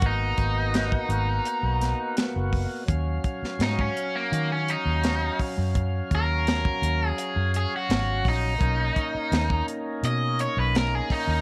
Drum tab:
HH |x-x-x-x-x-x-x-o-|x-x-x-x-x-x-x-o-|x-x-x-x-x-x-x-o-|x-x-x-x-x-x-x-o-|
SD |----o-----o-o---|---oo-------o---|----o-------o---|----o-------o---|
BD |o-o--o--------o-|o-o--o--------o-|o-o--o--------o-|o-o--o--------o-|